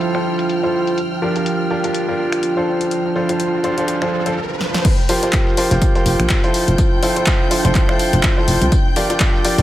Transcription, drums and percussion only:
0.01 closed hi-hat
0.15 finger snap
0.39 closed hi-hat
0.49 closed hi-hat
0.87 closed hi-hat
0.98 closed hi-hat
1.36 closed hi-hat
1.46 closed hi-hat
1.84 closed hi-hat
1.95 closed hi-hat
2.32 finger snap, closed hi-hat
2.43 closed hi-hat
2.81 closed hi-hat
2.91 closed hi-hat
3.29 closed hi-hat
3.40 closed hi-hat
3.64 closed hi-hat
3.78 closed hi-hat
3.88 closed hi-hat
4.02 finger snap
4.26 closed hi-hat
4.61 snare
4.74 snare
4.85 kick, closed hi-hat, crash, tambourine
5.09 open hi-hat, tambourine
5.23 snare, closed hi-hat
5.33 kick, snare, clap, closed hi-hat, tambourine
5.47 snare
5.57 open hi-hat, tambourine
5.71 closed hi-hat
5.82 kick, closed hi-hat, tambourine
5.95 closed hi-hat
6.06 open hi-hat, tambourine
6.20 finger snap, closed hi-hat
6.30 kick, snare, clap, closed hi-hat, tambourine
6.44 closed hi-hat
6.54 open hi-hat, tambourine
6.68 closed hi-hat
6.78 kick, closed hi-hat, tambourine
7.03 open hi-hat, tambourine
7.16 closed hi-hat
7.26 kick, snare, clap, closed hi-hat, tambourine
7.51 open hi-hat, tambourine
7.65 closed hi-hat
7.75 kick, clap, closed hi-hat, tambourine
7.89 finger snap, snare
7.99 open hi-hat, tambourine
8.13 snare, closed hi-hat
8.23 kick, snare, clap, closed hi-hat, tambourine
8.37 snare
8.48 open hi-hat, tambourine
8.62 closed hi-hat
8.72 kick, closed hi-hat, tambourine
8.96 open hi-hat, tambourine
9.10 snare, closed hi-hat
9.20 kick, snare, clap, closed hi-hat, tambourine
9.34 snare
9.45 open hi-hat, tambourine
9.58 closed hi-hat

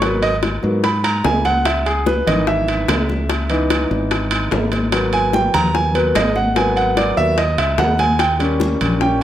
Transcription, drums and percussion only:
0.02 high bongo, high conga, high timbale
0.22 high conga, high timbale
0.43 high bongo, high conga, high timbale, low timbale
0.63 high bongo, high conga
0.84 high bongo, high timbale
1.04 high bongo, high conga, high timbale
1.25 high bongo, low bongo, high conga, low timbale
1.45 high bongo, high conga, high timbale
1.65 high bongo, high conga, high timbale
1.86 high bongo, high conga, high timbale
2.06 high bongo, high conga, low timbale
2.28 high conga, low conga, high timbale
2.47 high bongo, high conga
2.68 high bongo, high conga, high timbale
2.88 high bongo, low bongo, high conga, high timbale, low timbale
3.09 high bongo, high conga
3.30 high bongo, high conga, high timbale
3.50 high timbale
3.70 high bongo, high conga, high timbale, low timbale
3.91 high bongo, high conga
4.11 high bongo, high conga, high timbale
4.31 high bongo, high conga, high timbale
4.51 high bongo, low bongo, high conga, low timbale
4.72 high bongo, high conga, high timbale
4.92 high bongo, high conga, high timbale
5.13 high bongo, high conga, high timbale
5.33 high bongo, high conga, low timbale
5.54 high conga, low conga, high timbale
5.75 high bongo, high conga
5.95 high bongo, high conga, high timbale
6.15 high bongo, low bongo, high conga, high timbale, low timbale
6.36 high bongo, high conga
6.56 high bongo, high conga, high timbale
6.77 high conga, high timbale
6.97 high bongo, high conga, high timbale, low timbale
7.17 high bongo, high conga
7.38 high bongo, high conga, high timbale
7.58 high bongo, high conga, high timbale
7.78 high bongo, low bongo, high conga, low timbale
7.99 high bongo, high conga, high timbale
8.19 high bongo, high conga, high timbale
8.40 high bongo, high conga, high timbale
8.60 high bongo, high conga, low timbale
8.81 high conga, low conga, high timbale
9.01 high bongo, high conga

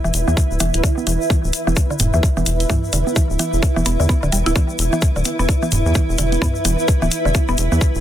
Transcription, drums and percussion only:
0.05 shaker
0.14 closed hi-hat, shaker
0.28 high conga, shaker
0.37 kick, shaker
0.51 shaker
0.60 closed hi-hat, high conga, shaker
0.74 closed hi-hat, shaker
0.84 kick, shaker
0.97 high conga, shaker
1.07 closed hi-hat, shaker
1.22 shaker
1.30 kick, high conga, shaker
1.44 shaker
1.53 closed hi-hat, shaker
1.67 high conga, shaker
1.76 kick, shaker
1.91 shaker
1.99 closed hi-hat, mid tom, high conga, shaker
2.14 shaker
2.23 kick, shaker
2.37 high conga, shaker
2.46 closed hi-hat, shaker
2.60 closed hi-hat, shaker
2.70 kick, mid tom, high conga, shaker
2.84 shaker
2.93 closed hi-hat, shaker
3.07 high conga, shaker
3.16 kick, shaker
3.31 shaker
3.39 closed hi-hat, high conga, shaker
3.53 shaker
3.63 kick, shaker
3.77 high conga, shaker
3.86 closed hi-hat, shaker
4.00 shaker
4.09 kick, high conga, shaker
4.23 shaker
4.32 closed hi-hat, shaker
4.46 closed hi-hat, high conga, shaker
4.56 kick, high conga, shaker
4.69 shaker
4.79 closed hi-hat, shaker
4.92 high conga, shaker
5.02 kick, shaker
5.16 shaker
5.25 closed hi-hat, high conga, shaker
5.40 shaker
5.49 kick, shaker
5.63 high conga, shaker
5.72 closed hi-hat, mid tom, shaker
5.86 shaker
5.95 kick, high conga, shaker
6.10 shaker
6.18 closed hi-hat, shaker
6.32 closed hi-hat, high conga, shaker
6.42 kick, mid tom, shaker
6.55 shaker
6.65 closed hi-hat, high conga, shaker
6.79 shaker
6.88 kick, shaker
7.02 high conga, shaker
7.11 closed hi-hat, shaker
7.27 shaker
7.34 kick, high conga, shaker
7.48 shaker
7.58 closed hi-hat, shaker
7.72 high conga, shaker
7.81 kick, shaker
7.95 shaker

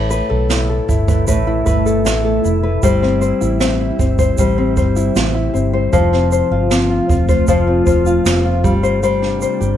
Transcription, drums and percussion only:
0.11 shaker
0.50 snare, shaker
0.89 kick, shaker
1.08 kick, shaker
1.28 kick, shaker
1.66 kick, shaker
1.86 shaker
2.06 snare, shaker
2.45 shaker
2.83 kick, shaker
3.03 snare
3.22 shaker
3.42 shaker
3.60 snare, shaker
3.99 kick, shaker
4.19 kick, shaker
4.38 kick, shaker
4.77 kick, shaker
4.96 shaker
5.16 snare, shaker
5.55 shaker
5.93 kick, shaker
6.13 snare
6.32 shaker
6.71 snare, shaker
7.09 kick, shaker
7.29 kick, shaker
7.47 kick, shaker
7.87 kick, shaker
8.06 shaker
8.26 snare, shaker
8.64 kick, shaker
8.84 shaker
9.03 shaker
9.22 snare
9.41 shaker
9.62 shaker

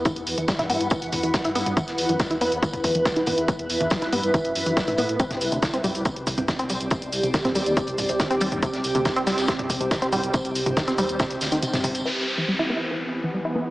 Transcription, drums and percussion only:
0.05 kick, closed hi-hat, mid tom, tambourine
0.16 closed hi-hat
0.26 open hi-hat, tambourine
0.38 closed hi-hat
0.48 kick, snare, closed hi-hat, tambourine
0.59 snare, closed hi-hat, mid tom
0.70 open hi-hat, tambourine
0.81 closed hi-hat
0.90 kick, closed hi-hat, tambourine
1.02 closed hi-hat
1.12 mid tom, open hi-hat, tambourine
1.23 closed hi-hat
1.34 kick, snare, closed hi-hat, tambourine
1.44 closed hi-hat
1.55 open hi-hat, tambourine
1.66 closed hi-hat, mid tom
1.77 kick, closed hi-hat, tambourine
1.87 snare, closed hi-hat
1.98 open hi-hat, tambourine
2.09 closed hi-hat
2.19 kick, snare, closed hi-hat, mid tom, tambourine
2.31 closed hi-hat
2.41 open hi-hat, tambourine
2.52 closed hi-hat
2.63 kick, closed hi-hat, tambourine
2.73 closed hi-hat, mid tom
2.84 kick, open hi-hat, tambourine
2.95 closed hi-hat
3.05 kick, snare, closed hi-hat, tambourine
3.16 closed hi-hat
3.26 mid tom, open hi-hat, tambourine
3.38 closed hi-hat
3.48 kick, closed hi-hat, tambourine
3.59 closed hi-hat
3.69 open hi-hat, tambourine
3.81 closed hi-hat, mid tom
3.90 kick, snare, closed hi-hat, tambourine
4.02 snare, closed hi-hat
4.13 open hi-hat, tambourine
4.23 closed hi-hat
4.34 kick, closed hi-hat, mid tom, tambourine
4.45 closed hi-hat
4.55 open hi-hat, tambourine
4.66 closed hi-hat
4.77 kick, snare, closed hi-hat, tambourine
4.88 closed hi-hat, mid tom
4.98 open hi-hat, tambourine
5.09 closed hi-hat
5.19 kick, closed hi-hat, tambourine, shaker
5.31 snare, closed hi-hat, mid tom, shaker
5.41 open hi-hat, tambourine, shaker
5.52 closed hi-hat, shaker
5.62 kick, snare, closed hi-hat, tambourine, shaker
5.74 closed hi-hat, shaker
5.84 mid tom, open hi-hat, tambourine, shaker
5.95 closed hi-hat, shaker
6.05 kick, closed hi-hat, tambourine, shaker
6.16 closed hi-hat
6.27 kick, open hi-hat, tambourine, shaker
6.38 closed hi-hat, mid tom, shaker
6.48 kick, snare, closed hi-hat, tambourine, shaker
6.59 closed hi-hat, shaker
6.69 open hi-hat, tambourine, shaker
6.81 closed hi-hat, shaker
6.90 kick, closed hi-hat, mid tom, tambourine, shaker
7.02 closed hi-hat, shaker
7.13 open hi-hat, tambourine, shaker
7.23 closed hi-hat, shaker
7.34 kick, snare, closed hi-hat, tambourine, shaker
7.45 snare, closed hi-hat, mid tom, shaker
7.55 open hi-hat, tambourine, shaker
7.66 closed hi-hat, shaker
7.77 kick, closed hi-hat, tambourine, shaker
7.87 closed hi-hat, shaker
7.98 mid tom, open hi-hat, tambourine, shaker
8.09 closed hi-hat, shaker
8.19 kick, snare, closed hi-hat, tambourine, shaker
8.31 closed hi-hat, shaker
8.41 open hi-hat, tambourine, shaker
8.52 closed hi-hat, mid tom, shaker
8.63 kick, closed hi-hat, tambourine, shaker
8.73 snare, closed hi-hat, shaker
8.84 open hi-hat, tambourine, shaker
8.95 closed hi-hat, shaker
9.05 kick, snare, closed hi-hat, mid tom, tambourine, shaker
9.16 closed hi-hat, shaker
9.26 snare, open hi-hat, tambourine, shaker
9.37 snare, closed hi-hat, tambourine, shaker
9.48 kick, snare, closed hi-hat, tambourine, shaker
9.59 closed hi-hat, mid tom
9.70 kick, open hi-hat, tambourine, shaker
9.81 closed hi-hat, shaker
9.91 kick, snare, closed hi-hat, tambourine, shaker
10.02 closed hi-hat, shaker
10.12 mid tom, open hi-hat, tambourine, shaker
10.23 closed hi-hat, shaker
10.33 kick, closed hi-hat, tambourine, shaker
10.45 closed hi-hat, shaker
10.55 open hi-hat, tambourine, shaker
10.66 closed hi-hat, mid tom, shaker
10.77 kick, snare, closed hi-hat, tambourine, shaker
10.88 snare, closed hi-hat, shaker
10.98 kick, open hi-hat, tambourine, shaker
11.09 closed hi-hat, shaker
11.19 kick, snare, closed hi-hat, mid tom, tambourine, shaker
11.30 closed hi-hat, shaker
11.41 snare, open hi-hat, tambourine, shaker
11.52 closed hi-hat, shaker
11.63 closed hi-hat, tambourine, shaker
11.73 snare, closed hi-hat, mid tom, tambourine, shaker
11.84 closed hi-hat, open hi-hat, shaker
11.95 closed hi-hat, tambourine, shaker
12.05 closed hi-hat
12.16 closed hi-hat
12.27 closed hi-hat
12.38 closed hi-hat
12.48 closed hi-hat
12.59 closed hi-hat
12.70 closed hi-hat
12.81 closed hi-hat
12.91 closed hi-hat
13.02 closed hi-hat
13.13 closed hi-hat
13.23 closed hi-hat
13.34 closed hi-hat
13.45 closed hi-hat
13.55 closed hi-hat
13.66 closed hi-hat

